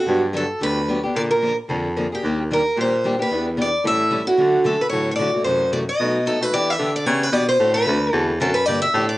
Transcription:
Already playing: F#4
0.07 G2 D3 F#3 B3 D4 G4
0.33 D3 F#3 B3 D4 G4 A4
0.60 D2 D3 F#3 B3 D4 G4 B4
0.88 D3 F#3 B3 D4 G4
1.03 B3 D4 G4
1.15 A#2 D3 F3 A#3 D4 G#4 D5
1.31 A#4
1.41 D3 F3 A#3 D4 G#4
1.68 F2 D3 F3 A#3 D4 G#4
1.96 D3 F3 A#3 D4 G#4
2.12 A#3 D4 G4 G#4
2.23 D#2 D#3 G3 A#3 D4 G4
2.51 D#3 G3 A#3 D4 G4 A#4
2.76 A#2 D#3 G3 A#3 D4 G4
2.81 C5
3.04 D#3 G3 A#3 D4 G4
3.19 A#3 D4 G4 B4
3.30 E2 E3 B3 D4 G4
3.57 E3 B3 D4 G4
3.62 D5
3.84 A2 E3 G3 C#4 E4 A4 E5
4.11 E3 G3 C#4 E4 A4
4.25 C#4 E4 F#4 A4
4.37 D3 F#3 A3 C#4 F#4
4.64 D3 F#3 A3 C#4 F#4 A4
4.81 B4
4.89 A2 D3 F#3 A3 C#4 F#4 C#5
5.11 C#5
5.16 D3 F#3 D5
5.20 A3 C#4 F#4
5.34 A3 C#4 F#4
5.44 F#2 C3 E3 A3 E4 F#4 C5
5.72 C3 E3 A3 E4 F#4 D5
5.89 D#5
6.00 B2 F#3 A3 D#4 F#4
6.26 B2 F#3 A3 D#4 F#4 A4
6.41 A3 D#4 F#4 B4
6.53 E3 B3 D4 G4 D5
6.70 E5
6.79 D3 E3 B3 D4 G4
6.96 D5
7.05 C#3 E3 B3 D4 G4 C#5
7.23 B4
7.32 B2 E3 B3 D4 G4 D5
7.49 C5
7.59 A2 D3 A3 C4 F#4 A4
7.74 B4
7.85 D2 D3 A3 C4 F#4 A4
8.12 E2 D3 A3 C4 F#4 A4
8.40 F#2 D3 A3 C4 F#4 A4
8.54 B4
8.66 G2 D3 F3 A#3 D4 G4 D5
8.82 E5
8.94 A2 D3 F3 A#3 D4 G4
9.09 D5

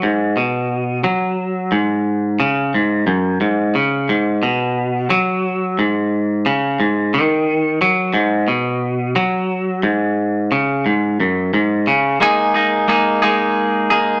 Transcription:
0.03 G#2
0.37 B2
1.04 F#3
1.72 G#2
2.40 C#3
2.74 G#2
3.07 F#2
3.41 G#2
3.75 C#3
4.09 G#2
4.43 B2
5.10 F#3
5.79 G#2
6.46 C#3
6.80 G#2
7.14 D#3
7.81 F#3
8.14 G#2
8.48 B2
9.16 F#3
9.83 G#2
10.52 C#3
10.86 G#2
11.20 F#2
11.54 G#2
11.87 C#3
12.20 G#3 A#3 D#4 G#4
12.54 A#3 D#4 G#4
12.88 G#3 A#3 D#4 G#4
13.22 G#3 A#3 D#4 G#4
13.90 A#3 D#4 G#4

